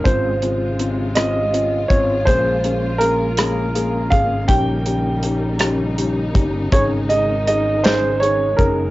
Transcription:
0.00 4.46 G#3 soft
0.00 1.19 C5 medium
0.05 1.87 G#1 medium
0.05 2.25 C3 soft
0.05 2.25 C#3 medium
0.05 0.31 C4 medium
0.05 0.32 C#4 medium
0.05 0.32 F4 medium
0.05 4.45 F4 medium
0.05 kick medium
0.05 closed hi-hat medium
0.42 0.68 C4 medium
0.42 0.68 C#4 medium
0.42 0.69 F4 medium
0.42 closed hi-hat soft
0.79 1.06 C4 medium
0.79 1.06 C#4 medium
0.79 1.06 F4 medium
0.79 closed hi-hat soft
1.15 1.42 C4 medium
1.15 1.43 C#4 medium
1.15 1.43 F4 medium
1.15 1.92 D#5 medium
1.15 cross-stick medium
1.15 closed hi-hat medium
1.53 1.79 C4 medium
1.53 1.80 C#4 medium
1.53 1.80 F4 medium
1.53 closed hi-hat soft
1.88 2.25 G#1 medium
1.88 2.16 C4 medium
1.88 2.16 C#4 medium
1.88 2.16 F4 medium
1.88 2.28 C#5 medium
1.88 kick medium
1.88 closed hi-hat soft
2.25 4.08 A#1 medium
2.25 8.90 C#3 medium
2.25 2.53 A#3 medium
2.25 6.68 A#3 soft
2.25 2.53 C#4 medium
2.25 2.53 G#4 medium
2.25 3.03 C5 medium
2.25 kick medium
2.25 closed hi-hat medium
2.64 2.90 A#3 medium
2.64 2.90 C#4 medium
2.64 2.90 G#4 medium
2.64 closed hi-hat soft
2.98 3.27 A#3 medium
2.98 3.27 C#4 medium
2.98 3.27 G#4 medium
2.98 4.07 A#4 medium
2.98 closed hi-hat soft
3.37 3.64 A#3 medium
3.37 3.64 C#4 medium
3.37 3.64 G#4 medium
3.37 cross-stick loud
3.37 closed hi-hat medium
3.75 4.01 A#3 medium
3.75 4.01 C#4 medium
3.75 4.01 G#4 medium
3.75 closed hi-hat soft
4.10 4.47 G#1 medium
4.10 4.38 A#3 medium
4.10 4.38 C#4 medium
4.10 4.38 G#4 medium
4.10 4.50 F5 medium
4.10 kick medium
4.10 closed hi-hat soft
4.48 6.31 A#1 medium
4.48 6.71 G3 medium
4.48 4.75 C#4 medium
4.48 4.75 D#4 medium
4.48 8.90 D#4 medium
4.48 4.75 G4 medium
4.48 5.93 G5 medium
4.48 kick medium
4.48 closed hi-hat medium
4.85 5.12 C#4 medium
4.85 5.12 D#4 medium
4.85 5.12 G4 medium
4.85 closed hi-hat soft
5.23 5.49 C#4 medium
5.23 5.49 D#4 medium
5.23 5.50 G4 medium
5.23 closed hi-hat soft
5.59 5.86 C#4 medium
5.59 5.87 D#4 medium
5.59 5.87 G4 medium
5.59 cross-stick medium
5.59 closed hi-hat medium
5.97 6.24 C#4 medium
5.97 6.24 D#4 medium
5.97 6.24 G4 medium
5.97 closed hi-hat soft
6.34 6.70 G1 medium
6.34 6.61 C#4 medium
6.34 6.61 D#4 medium
6.34 6.61 G4 medium
6.34 kick medium
6.34 closed hi-hat soft
6.72 8.55 G#1 medium
6.72 8.90 D#3 medium
6.72 8.90 G#3 soft
6.72 6.99 C#4 medium
6.72 6.99 D#4 medium
6.72 6.99 G#4 medium
6.72 6.81 C#5 medium
6.72 kick medium
6.72 closed hi-hat medium
7.09 7.36 C#4 medium
7.09 7.36 D#4 medium
7.09 7.37 G#4 medium
7.09 7.46 D#5 medium
7.09 closed hi-hat soft
7.47 7.73 C#4 medium
7.47 7.74 D#4 medium
7.47 7.74 G#4 medium
7.47 7.86 D#5 medium
7.47 closed hi-hat soft
7.84 8.11 C#4 medium
7.84 8.11 D#4 medium
7.84 8.11 G#4 medium
7.84 8.22 C5 medium
7.84 snare medium
7.84 closed hi-hat medium
8.20 8.48 C#4 medium
8.20 8.48 D#4 medium
8.20 8.48 G#4 medium
8.20 8.59 C#5 medium
8.20 closed hi-hat soft
8.57 8.90 F#1 medium
8.57 8.85 C#4 medium
8.57 8.85 D#4 medium
8.57 8.85 G#4 medium
8.57 8.90 A#4 medium
8.57 kick medium
8.57 closed hi-hat soft

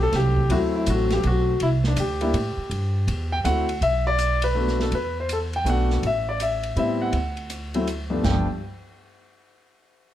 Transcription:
0.00 0.11 B1 medium
0.00 0.42 F#3 medium
0.00 0.42 A3 medium
0.00 0.42 C4 medium
0.00 0.14 A4 medium
0.13 0.48 C2 medium
0.13 0.49 G4 loud
0.13 snare soft
0.13 ride medium
0.37 kick medium
0.49 0.85 D2 medium
0.49 1.52 F#3 medium
0.49 1.53 A3 medium
0.49 1.53 C4 medium
0.49 0.74 E4 medium
0.49 0.57 F#4 loud
0.49 ride medium
0.76 0.88 E4 medium
0.86 1.22 A1 medium
0.86 1.10 F#4 medium
0.86 hi-hat pedal medium
0.86 ride medium
1.10 1.24 G4 medium
1.10 snare soft
1.10 ride soft
1.23 1.59 B1 medium
1.23 1.59 F#4 medium
1.23 ride medium
1.60 1.96 C2 medium
1.60 1.68 E4 loud
1.60 ride medium
1.84 1.99 D4 medium
1.84 snare soft
1.96 2.33 D2 medium
1.96 3.41 G4 medium
1.96 hi-hat pedal medium
1.96 ride medium
2.21 2.33 G3 medium
2.21 2.33 A#3 medium
2.21 2.33 D4 medium
2.21 2.33 E4 medium
2.21 ride soft
2.33 2.56 A2 medium
2.33 ride medium
2.57 muted upright bass stroke soft
2.70 3.06 G2 medium
2.70 ride medium
3.07 3.43 E2 medium
3.07 ride medium
3.32 3.37 G5 medium
3.44 3.80 D2 medium
3.44 3.66 A3 soft
3.44 3.66 C4 soft
3.44 3.66 E4 soft
3.44 3.66 F#4 medium
3.44 3.79 F#5 loud
3.44 hi-hat pedal medium
3.44 ride medium
3.69 ride soft
3.81 4.88 B1 medium
3.81 4.06 E5 loud
3.81 ride medium
4.07 4.40 D5 loud
4.19 hi-hat pedal medium
4.19 ride medium
4.42 4.81 B4 loud
4.42 ride medium
4.55 4.92 A3 medium
4.55 4.92 B3 soft
4.55 4.92 D4 soft
4.55 4.92 F#4 medium
4.68 snare soft
4.80 4.92 A4 medium
4.80 snare soft
4.92 5.61 E2 medium
4.92 5.15 B4 medium
4.92 ride soft
5.20 5.30 C5 medium
5.29 5.38 A4 medium
5.29 hi-hat pedal soft
5.29 ride medium
5.53 5.66 G5 medium
5.53 ride soft
5.64 5.99 B1 medium
5.64 6.02 A3 medium
5.64 6.02 B3 medium
5.64 6.03 D4 medium
5.64 6.03 F#4 medium
5.64 hi-hat pedal soft
5.64 ride medium
5.70 6.05 F#5 medium
5.90 snare soft
6.03 6.72 A1 medium
6.03 ride soft
6.07 6.27 E5 medium
6.29 6.41 D5 medium
6.40 6.77 E5 medium
6.40 hi-hat pedal medium
6.40 ride medium
6.63 ride soft
6.76 7.10 A2 medium
6.76 7.13 G3 medium
6.76 7.13 B3 medium
6.76 7.13 C4 medium
6.76 7.13 E4 medium
6.76 7.00 E5 medium
6.76 ride soft
7.02 7.84 F#5 medium
7.12 8.19 D2 medium
7.12 ride medium
7.37 ride soft
7.50 hi-hat pedal soft
7.50 ride medium
7.74 7.86 F#3 medium
7.74 7.86 A3 medium
7.74 7.86 C4 medium
7.74 7.86 E4 medium
7.74 ride soft
7.87 hi-hat pedal soft
7.87 ride medium
8.10 8.58 G2 medium
8.10 8.22 F3 soft
8.10 8.22 A3 soft
8.10 8.22 B3 soft
8.10 8.22 D4 medium
8.23 8.46 G1 medium
8.23 8.45 F3 medium
8.23 8.45 A3 soft
8.23 8.45 B3 soft
8.23 8.45 D4 medium
8.23 8.47 G5 medium
8.23 kick medium
8.23 snare medium
8.23 crash medium

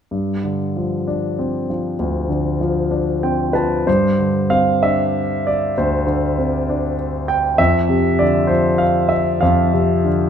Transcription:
0.11 1.95 G2 soft
0.44 1.65 D3 soft
0.77 1.68 F3 soft
1.07 2.26 D4 soft
1.39 2.57 C4 soft
1.70 2.59 F3 soft
1.99 3.83 D2 soft
2.29 3.51 D3 soft
2.61 3.54 F3 soft
2.91 3.84 D4 soft
3.23 3.85 C4 soft
3.23 3.53 G5 soft
3.53 3.86 F3 soft
3.53 3.84 B4 soft
3.53 3.85 A5 soft
3.87 5.73 G2 soft
3.87 4.47 C5 medium
4.19 5.42 D3 soft
4.50 5.73 C4 soft
4.50 4.84 F5 medium
4.82 6.04 D4 soft
4.82 5.48 E5 medium
5.47 5.75 D5 medium
5.78 7.55 D2 soft
5.78 6.95 C5 medium
6.07 7.25 D3 soft
6.38 7.55 C4 soft
6.69 7.56 D4 soft
7.28 7.59 G5 medium
7.58 9.39 F2 soft
7.58 8.21 E5 medium
7.89 9.08 C3 soft
8.19 9.40 D3 soft
8.19 8.51 D5 medium
8.47 9.70 F3 soft
8.47 8.81 C5 medium
8.78 9.11 F5 medium
9.09 9.42 E5 medium
9.41 10.30 F2 soft
9.41 10.08 F5 medium
9.73 10.30 C3 soft
10.05 10.30 D3 soft

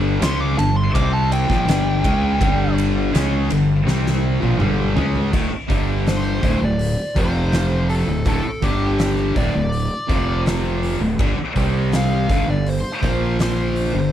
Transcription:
0.00 0.18 G1 loud
0.00 0.20 G2 loud
0.00 0.20 D3 loud
0.00 0.21 G3 loud
0.21 0.55 C#2 loud
0.21 0.56 C#3 medium
0.21 0.57 G#3 loud
0.21 0.57 C#4 loud
0.21 0.41 C6 loud
0.21 snare loud
0.21 ride loud
0.41 0.58 D6 medium
0.57 0.92 G1 medium
0.57 0.87 G2 medium
0.57 0.87 D3 medium
0.57 0.76 A5 medium
0.57 ride medium
0.76 0.94 C6 medium
0.94 1.46 C2 loud
0.94 1.48 C3 medium
0.94 1.48 G3 loud
0.94 1.48 C4 loud
0.94 1.12 D6 loud
0.94 kick loud
0.94 ride loud
1.13 1.31 A5 loud
1.32 2.74 G5 loud
1.32 ride medium
1.48 1.66 A#1 loud
1.48 1.65 A#2 loud
1.48 1.66 F3 loud
1.48 kick loud
1.48 snare soft
1.65 2.02 G1 loud
1.65 2.02 G2 loud
1.65 2.02 D3 loud
1.65 2.03 G3 loud
1.65 ride loud
1.69 snare loud
2.03 2.38 C#2 loud
2.03 2.39 C#3 medium
2.03 2.39 G#3 loud
2.03 2.39 C#4 loud
2.03 kick loud
2.03 ride medium
2.39 3.10 G1 medium
2.39 3.12 G2 loud
2.39 3.12 D3 loud
2.39 3.13 G3 loud
2.39 kick loud
2.39 ride loud
2.78 ride medium
3.12 3.48 C#2 loud
3.12 3.48 C#3 medium
3.12 3.49 G#3 loud
3.12 3.49 C#4 loud
3.12 snare loud
3.12 ride loud
3.50 3.85 G1 medium
3.50 3.79 G2 medium
3.50 3.79 D3 medium
3.50 ride medium
3.85 4.38 C2 loud
3.85 4.40 C3 medium
3.85 4.40 G3 medium
3.85 4.41 C4 loud
3.85 snare medium
4.07 snare medium
4.41 4.59 A#1 loud
4.41 4.58 A#2 medium
4.41 4.59 F3 loud
4.41 high tom medium
4.59 4.94 G1 loud
4.59 4.95 G2 loud
4.59 4.95 D3 loud
4.59 4.95 G3 loud
4.59 mid tom loud
4.95 5.31 C#2 loud
4.95 5.31 C#3 medium
4.95 5.32 G#3 loud
4.95 5.32 C#4 loud
4.95 floor tom loud
5.15 floor tom medium
5.32 5.50 D1 medium
5.32 5.50 D2 loud
5.32 5.50 A2 loud
5.32 kick loud
5.32 crash loud
5.51 muted distorted electric guitar stroke medium
5.51 muted fingered electric bass stroke soft
5.69 6.39 G1 medium
5.69 6.41 G2 medium
5.69 6.42 D3 loud
5.69 6.42 G3 loud
5.69 kick loud
5.69 open hi-hat medium
6.07 6.64 C5 loud
6.07 snare loud
6.07 open hi-hat medium
6.42 6.60 D1 medium
6.42 6.60 D2 loud
6.42 6.60 A2 medium
6.42 kick loud
6.42 open hi-hat medium
6.61 6.95 D1 medium
6.61 6.91 D2 medium
6.61 6.91 A2 medium
6.61 7.19 D5 loud
6.79 open hi-hat medium
7.15 8.04 F1 medium
7.15 8.06 F2 loud
7.15 8.07 C3 loud
7.15 8.07 F3 loud
7.15 7.87 C5 loud
7.15 kick loud
7.15 open hi-hat medium
7.52 snare loud
7.52 open hi-hat medium
7.89 8.24 A4 medium
7.89 open hi-hat medium
8.07 8.25 D1 medium
8.07 8.25 D2 medium
8.07 8.26 A2 medium
8.25 8.43 D1 medium
8.25 8.43 D2 medium
8.25 8.44 A2 loud
8.25 8.65 A4 loud
8.25 kick loud
8.25 open hi-hat medium
8.44 muted distorted electric guitar stroke medium
8.44 muted fingered electric bass stroke soft
8.62 9.32 G1 medium
8.62 9.35 G2 medium
8.62 9.35 D3 loud
8.62 9.35 G3 loud
8.62 9.39 G4 medium
8.62 kick loud
8.62 open hi-hat medium
8.99 snare loud
8.99 open hi-hat medium
9.35 9.53 D1 loud
9.35 9.53 D2 loud
9.35 9.53 A2 loud
9.35 10.42 D5 medium
9.35 kick loud
9.35 open hi-hat medium
9.54 9.89 D1 medium
9.54 9.84 D2 medium
9.54 9.84 A2 medium
9.72 open hi-hat medium
10.08 10.97 F1 loud
10.08 10.99 F2 medium
10.08 11.00 C3 medium
10.08 11.00 F3 loud
10.08 kick loud
10.08 open hi-hat medium
10.46 snare loud
10.46 open hi-hat medium
10.83 open hi-hat medium
11.00 11.18 D1 medium
11.00 11.19 D2 medium
11.00 11.20 A2 medium
11.19 11.37 G1 medium
11.19 11.37 G2 loud
11.19 11.37 D3 loud
11.19 kick loud
11.19 crash loud
11.38 muted distorted electric guitar stroke medium
11.38 muted fingered electric bass stroke soft
11.56 12.26 C2 medium
11.56 12.28 C3 loud
11.56 12.29 G3 loud
11.56 12.29 C4 medium
11.56 kick loud
11.56 open hi-hat medium
11.92 12.49 F5 loud
11.92 snare loud
11.92 open hi-hat medium
12.28 12.47 G1 medium
12.28 12.45 G2 medium
12.28 12.46 D3 loud
12.28 kick loud
12.28 open hi-hat medium
12.46 12.82 G1 medium
12.46 12.77 G2 medium
12.46 12.77 D3 medium
12.46 12.68 D5 medium
12.66 13.37 C5 medium
12.66 open hi-hat medium
13.02 13.91 A#1 loud
13.02 13.93 A#2 medium
13.02 13.93 F3 loud
13.02 13.94 A#3 medium
13.02 kick loud
13.02 open hi-hat medium
13.39 14.12 C5 medium
13.39 snare loud
13.39 open hi-hat medium
13.76 open hi-hat medium
13.94 14.12 G1 medium
13.94 14.11 G2 medium
13.94 14.12 D3 medium

